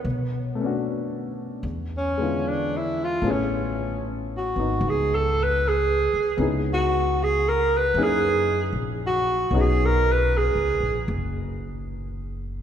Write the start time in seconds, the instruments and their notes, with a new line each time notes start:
Already playing: tenor saxophone B3, grand piano C#5
0.05 upright bass B2
0.55 grand piano A3 B3
0.61 grand piano C#4 D4
0.66 grand piano F#4
1.63 upright bass E2
1.97 tenor saxophone C#4
2.18 grand piano D3 G#3 B3
2.22 grand piano E4 F4
2.49 tenor saxophone D4
2.77 tenor saxophone E4
3.04 tenor saxophone F4
3.22 upright bass A1, grand piano A3 B3 C#4 E4
3.27 tenor saxophone C#4, grand piano G#4
4.37 tenor saxophone F#4
4.56 upright bass G#1, grand piano B3 D#4
4.81 upright bass C#2
4.89 tenor saxophone G#4
5.14 tenor saxophone A4
5.43 tenor saxophone B4
5.68 tenor saxophone G#4
6.13 muted upright bass stroke
6.37 upright bass C#2, grand piano B3 C#4 D#4 E4
6.41 grand piano G#4
6.73 tenor saxophone F#4
7.23 tenor saxophone G#4
7.49 tenor saxophone A#4
7.77 tenor saxophone B4
7.94 upright bass F#2, grand piano A#3 C#4 D#4 E4
7.98 grand piano G#4
8.03 tenor saxophone G#4
8.73 upright bass A#1
9.07 tenor saxophone F#4
9.51 upright bass B1, grand piano B3 C#4 D#4
9.55 grand piano F#4 G#4
9.60 tenor saxophone G#4
9.86 tenor saxophone A#4
10.12 tenor saxophone B4
10.37 tenor saxophone G#4
10.55 upright bass C#2
10.80 upright bass A#1
11.08 upright bass F#1